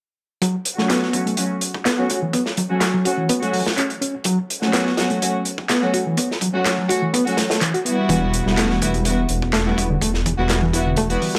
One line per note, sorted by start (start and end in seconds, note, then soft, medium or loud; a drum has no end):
0.42 0.54 F#3 medium
0.42 kick loud
0.42 closed hi-hat medium
0.65 closed hi-hat medium
0.78 1.11 F#3 medium
0.78 1.11 A3 medium
0.78 0.87 A3 medium
0.78 1.11 C#4 medium
0.78 1.11 F#4 medium
0.78 snare soft
0.90 1.25 B3 medium
0.90 snare loud
0.90 clap loud
0.90 closed hi-hat medium
1.03 snare soft
1.13 1.26 F#3 medium
1.13 1.26 A3 medium
1.13 1.26 C#4 medium
1.13 1.26 F#4 medium
1.13 kick medium
1.13 closed hi-hat medium
1.26 1.35 A3 medium
1.26 closed hi-hat soft
1.37 1.45 F#3 medium
1.37 1.45 A3 medium
1.37 1.45 C#4 medium
1.37 1.45 F#4 medium
1.37 closed hi-hat medium
1.61 closed hi-hat medium
1.74 kick medium
1.85 2.08 B3 medium
1.85 snare loud
1.85 clap loud
1.85 closed hi-hat medium
1.98 2.05 F#3 medium
1.98 2.05 A3 medium
1.98 2.05 C#4 medium
1.98 2.05 F#4 medium
2.10 2.19 F#4 medium
2.10 kick medium
2.10 closed hi-hat medium
2.22 2.32 E3 medium
2.33 2.43 B3 medium
2.33 kick medium
2.33 closed hi-hat medium
2.46 snare soft
2.57 2.63 F#3 medium
2.57 kick medium
2.57 closed hi-hat medium
2.70 2.81 F#3 medium
2.70 2.81 A3 medium
2.70 2.81 C#4 medium
2.70 2.81 F#4 medium
2.81 snare loud
2.81 clap loud
2.81 closed hi-hat medium
2.94 3.03 F#3 medium
3.05 3.13 F#3 medium
3.05 3.13 A3 medium
3.05 3.13 C#4 medium
3.05 3.15 F#4 medium
3.05 3.13 F#4 medium
3.05 kick medium
3.05 closed hi-hat medium
3.18 3.28 E3 medium
3.29 3.39 B3 medium
3.29 kick loud
3.29 closed hi-hat medium
3.42 3.49 F#3 medium
3.42 3.49 A3 medium
3.42 3.49 C#4 medium
3.42 3.49 F#4 medium
3.42 closed hi-hat soft
3.53 3.59 F#3 medium
3.53 open hi-hat medium
3.66 snare loud
3.77 3.90 C#4 medium
3.77 clap loud
3.77 closed hi-hat medium
3.90 closed hi-hat soft
4.01 4.14 C#4 medium
4.01 closed hi-hat medium
4.24 4.38 F#3 medium
4.24 kick loud
4.24 closed hi-hat medium
4.50 closed hi-hat medium
4.62 4.95 F#3 medium
4.62 4.95 A3 medium
4.62 4.71 A3 medium
4.62 4.95 C#4 medium
4.62 4.95 F#4 medium
4.62 snare soft
4.73 5.09 B3 medium
4.73 snare loud
4.73 clap loud
4.73 closed hi-hat medium
4.86 snare soft
4.97 5.10 F#3 medium
4.97 5.10 A3 medium
4.97 5.10 C#4 medium
4.97 5.10 F#4 medium
4.97 snare medium
4.97 closed hi-hat medium
5.10 5.19 A3 medium
5.10 closed hi-hat soft
5.22 5.29 F#3 medium
5.22 5.29 A3 medium
5.22 5.29 C#4 medium
5.22 5.29 F#4 medium
5.22 closed hi-hat medium
5.45 closed hi-hat medium
5.58 kick medium
5.69 5.93 B3 medium
5.69 snare loud
5.69 clap loud
5.69 closed hi-hat medium
5.82 5.89 F#3 medium
5.82 5.89 A3 medium
5.82 5.89 C#4 medium
5.82 5.89 F#4 medium
5.94 6.03 F#4 medium
5.94 kick medium
5.94 closed hi-hat medium
6.06 6.17 E3 medium
6.17 6.27 B3 medium
6.17 kick medium
6.17 closed hi-hat medium
6.31 snare soft
6.41 6.47 F#3 medium
6.41 kick medium
6.41 closed hi-hat medium
6.54 6.65 F#3 medium
6.54 6.65 A3 medium
6.54 6.65 C#4 medium
6.54 6.65 F#4 medium
6.66 snare loud
6.66 clap loud
6.66 closed hi-hat medium
6.78 6.87 F#3 medium
6.89 6.97 F#3 medium
6.89 6.97 A3 medium
6.89 6.97 C#4 medium
6.89 6.99 F#4 medium
6.89 6.97 F#4 medium
6.89 kick medium
6.89 closed hi-hat medium
7.02 7.12 E3 medium
7.13 7.23 B3 medium
7.13 kick loud
7.13 closed hi-hat medium
7.26 7.33 F#3 medium
7.26 7.33 A3 medium
7.26 7.33 C#4 medium
7.26 7.33 F#4 medium
7.26 closed hi-hat soft
7.37 7.49 A3 medium
7.37 snare medium
7.37 closed hi-hat medium
7.50 7.61 A3 medium
7.50 snare loud
7.50 closed hi-hat medium
7.61 7.71 E3 medium
7.61 clap loud
7.61 closed hi-hat medium
7.74 7.83 F#4 medium
7.74 closed hi-hat soft
7.85 8.43 G3 medium
7.85 7.97 B3 medium
7.85 8.43 B3 medium
7.85 8.43 E4 medium
7.85 8.43 F#4 medium
7.85 closed hi-hat medium
8.09 8.41 E1 medium
8.09 8.22 E3 medium
8.09 kick loud
8.09 closed hi-hat medium
8.33 closed hi-hat medium
8.46 9.25 E1 medium
8.46 8.55 G3 medium
8.46 8.79 G3 medium
8.46 8.79 B3 medium
8.46 8.79 E4 medium
8.46 8.79 F#4 medium
8.46 snare soft
8.57 8.93 A3 medium
8.57 snare loud
8.57 clap loud
8.57 closed hi-hat medium
8.70 snare soft
8.81 8.94 G3 medium
8.81 8.94 B3 medium
8.81 8.94 E4 medium
8.81 8.94 F#4 medium
8.81 kick medium
8.81 closed hi-hat medium
8.94 9.03 G3 medium
8.94 closed hi-hat soft
9.05 9.13 G3 medium
9.05 9.13 B3 medium
9.05 9.13 E4 medium
9.05 9.13 F#4 medium
9.05 closed hi-hat medium
9.29 9.73 E1 medium
9.29 closed hi-hat medium
9.42 kick medium
9.53 9.76 A3 loud
9.53 snare loud
9.53 clap loud
9.53 closed hi-hat medium
9.66 9.73 G3 medium
9.66 9.73 B3 medium
9.66 9.73 E4 medium
9.66 9.73 F#4 medium
9.78 9.96 E1 medium
9.78 9.87 E4 medium
9.78 kick medium
9.78 closed hi-hat medium
9.90 10.00 D3 medium
10.01 10.34 E1 loud
10.01 10.11 A3 medium
10.01 kick medium
10.01 closed hi-hat medium
10.14 snare soft
10.26 10.31 E3 medium
10.26 kick medium
10.26 closed hi-hat medium
10.38 11.17 E1 medium
10.38 10.49 G3 medium
10.38 10.49 B3 medium
10.38 10.49 E4 medium
10.38 10.49 F#4 medium
10.49 snare loud
10.49 clap medium
10.49 closed hi-hat medium
10.62 10.71 E3 medium
10.73 10.81 G3 medium
10.73 10.81 B3 medium
10.73 10.83 E4 medium
10.73 10.81 E4 medium
10.73 10.81 F#4 medium
10.73 kick medium
10.73 closed hi-hat medium
10.86 10.96 D3 medium
10.96 11.07 A3 medium
10.96 kick loud
10.96 closed hi-hat medium
11.10 11.17 G3 medium
11.10 11.17 B3 medium
11.10 11.17 E4 medium
11.10 11.17 F#4 medium
11.10 closed hi-hat soft
11.22 11.28 E3 medium
11.22 open hi-hat medium
11.35 snare loud